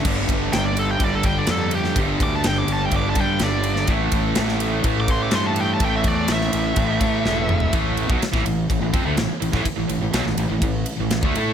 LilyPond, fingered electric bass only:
\new Staff \with { instrumentName = "Fingered electric bass" } { \clef bass \time 4/4 \key g \mixolydian \tempo 4 = 125 g,,8 g,,8 g,,4 g,,4 f,4 | g,,8 d,8 g,,8 g,,8 g,,8 g,8 g,,4 | a,,8 a,,8 a,,4 a,,4 g,4 | a,,8 e,8 a,,8 a,,8 a,,8 a,8 e,,4 |
a,,8. b,,16 r16 a,,16 a,,8 a,,16 a,,16 f,16 d,16 a,,16 r16 a,,16 a,,16 | r16 a,,16 a,,16 a,,16 b,,16 a,,16 a,,16 a,,16 a,,8 r16 a,,8 d,16 a,8 | }